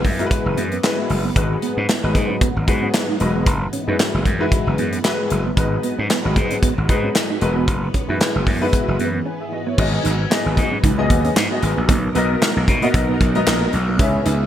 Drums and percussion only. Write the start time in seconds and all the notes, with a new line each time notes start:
0.05 kick, open hi-hat
0.19 closed hi-hat
0.31 kick, closed hi-hat
0.57 closed hi-hat
0.72 closed hi-hat
0.83 snare, clap, closed hi-hat
1.10 open hi-hat
1.36 kick, closed hi-hat
1.62 closed hi-hat
1.89 snare, clap, closed hi-hat
2.15 kick, closed hi-hat
2.41 kick, closed hi-hat
2.68 kick, closed hi-hat
2.94 snare, clap, closed hi-hat
3.20 closed hi-hat
3.46 kick, closed hi-hat
3.73 closed hi-hat
3.99 snare, clap, closed hi-hat
4.25 kick, closed hi-hat
4.52 kick, closed hi-hat
4.78 closed hi-hat
4.93 closed hi-hat
5.04 snare, clap, closed hi-hat
5.30 closed hi-hat
5.57 kick, closed hi-hat
5.83 closed hi-hat
6.10 snare, clap, closed hi-hat
6.36 kick, closed hi-hat
6.51 closed hi-hat
6.63 kick, closed hi-hat
6.89 kick, closed hi-hat
7.15 snare, clap, closed hi-hat
7.41 closed hi-hat
7.68 kick, closed hi-hat
7.94 kick, closed hi-hat
8.21 snare, clap, closed hi-hat
8.47 kick, open hi-hat
8.73 kick, closed hi-hat
9.00 closed hi-hat
9.78 kick, crash
10.05 closed hi-hat
10.31 snare, clap, closed hi-hat
10.57 kick, closed hi-hat
10.84 kick, closed hi-hat
11.10 kick, closed hi-hat
11.25 closed hi-hat
11.36 snare, clap, closed hi-hat
11.63 closed hi-hat
11.89 kick, closed hi-hat
12.15 closed hi-hat
12.42 snare, clap, closed hi-hat
12.68 kick, closed hi-hat
12.82 closed hi-hat
12.94 kick, closed hi-hat
13.21 kick, closed hi-hat
13.35 closed hi-hat
13.47 snare, clap, closed hi-hat
13.73 closed hi-hat
13.99 kick, closed hi-hat
14.26 closed hi-hat